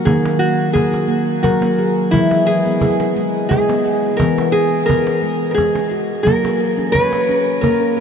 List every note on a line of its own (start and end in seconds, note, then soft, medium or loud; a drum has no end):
0.05 1.10 D#3 medium
0.05 0.41 A#3 medium
0.05 0.39 G#4 medium
0.05 cajon bass medium
0.25 cajon slap soft
0.39 0.73 F#4 medium
0.39 0.74 F#4 medium
0.73 0.92 A#3 medium
0.73 1.42 G#4 medium
0.73 cajon bass soft
0.91 1.09 F#4 medium
0.91 cajon slap soft
1.08 1.43 A#3 medium
1.43 1.96 F#3 medium
1.43 1.92 F#4 medium
1.43 1.62 A#4 medium
1.43 cajon bass soft
1.61 1.78 A#3 medium
1.61 cajon slap soft
1.79 2.13 G#4 medium
1.97 cajon slap soft
2.11 3.17 E3 medium
2.11 2.31 G#3 medium
2.11 2.46 E4 medium
2.11 cajon bass medium
2.31 2.66 G#4 medium
2.31 cajon slap soft
2.47 3.48 G#4 medium
2.65 2.82 B3 medium
2.81 3.16 G#4 medium
2.81 cajon bass soft
3.00 cajon slap soft
3.17 3.50 G#3 medium
3.49 4.03 G#3 medium
3.49 4.16 G#4 medium
3.49 3.69 G#4 medium
3.49 cajon bass medium
3.69 3.85 B3 medium
3.69 cajon slap soft
3.85 4.20 G#4 medium
4.03 cajon slap soft
4.17 5.24 E3 medium
4.17 4.54 B3 medium
4.17 4.50 A#4 medium
4.17 cajon bass medium
4.38 cajon slap soft
4.52 4.85 G#4 medium
4.52 4.88 G#4 medium
4.52 cajon slap soft
4.86 5.06 B3 medium
4.86 5.50 A#4 medium
4.86 cajon bass medium
5.07 5.23 G#4 medium
5.07 cajon slap soft
5.23 5.56 G#3 medium
5.23 cajon slap soft
5.51 6.04 G#4 medium
5.51 5.54 A#4 medium
5.57 5.74 G#3 medium
5.57 5.75 G#4 medium
5.57 cajon bass medium
5.57 cajon slap soft
5.75 5.91 G#3 medium
5.75 cajon slap soft
5.91 6.26 F#4 medium
5.91 cajon slap soft
6.23 7.29 F#3 medium
6.23 6.44 A#3 medium
6.23 6.92 A#4 medium
6.23 cajon bass medium
6.43 6.78 A#4 medium
6.43 cajon slap soft
6.78 6.94 C#4 medium
6.92 7.61 B4 medium
6.92 7.29 C#5 medium
6.92 cajon bass soft
7.13 cajon slap soft
7.29 7.64 C#4 medium
7.61 8.00 A#3 medium
7.61 8.00 A#4 medium
7.61 7.81 A#4 medium
7.61 cajon bass soft
7.80 7.97 C#4 medium
7.97 8.00 A#4 medium